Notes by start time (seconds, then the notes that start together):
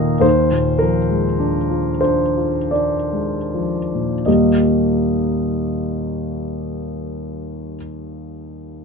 Already playing: D#2 A#2 D#3 A#3 D#4 D#5 F5
0.20 D#2 C5
0.52 A#2
0.79 F3 A#4
1.09 G#3
1.39 D4
1.70 F4
2.01 D4 C5
2.37 F4
2.71 D4 D5
3.12 G#3
3.54 F3
3.94 A#2
4.26 D#2 A#2 G3 A#3 D#4 G4 D#5